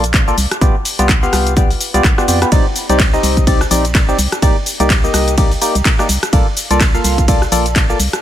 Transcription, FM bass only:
0.00 0.32 A#1 loud
0.38 0.47 C2 loud
0.61 0.70 C2 loud
0.99 1.27 C2 medium
1.33 1.75 C2 loud
1.94 2.01 C2 medium
2.04 2.13 C2 medium
2.28 2.45 F2 medium
2.52 2.61 C2 loud
2.89 3.18 C2 medium
3.23 3.65 C2 loud
3.71 4.13 A#1 loud
4.19 4.27 C2 loud
4.42 4.51 C2 loud
4.80 5.08 C2 medium
5.14 5.56 C2 loud
5.75 5.82 C2 medium
6.09 6.18 C2 medium
6.33 6.42 C2 loud
6.71 6.99 C2 loud
7.04 7.46 C2 loud
7.52 7.94 A#1 loud
8.00 8.08 C2 loud

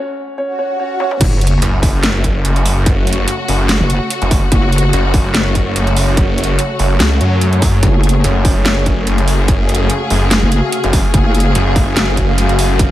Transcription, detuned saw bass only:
1.62 2.43 F#1 loud
2.45 3.26 F#1 loud
3.48 3.68 F#1 loud
3.69 3.78 F#1 loud
4.22 4.41 F#1 medium
4.93 5.74 F#1 loud
5.76 6.57 F#1 loud
6.79 6.99 F#1 loud
7.00 7.19 C#2 loud
7.21 7.81 F#2 loud
8.24 9.05 F#1 loud
9.07 9.88 F#1 loud
10.10 10.30 F#1 loud
10.31 10.40 F#1 loud
10.84 11.03 F#1 medium
11.55 12.36 F#1 loud
12.38 12.91 F#1 medium

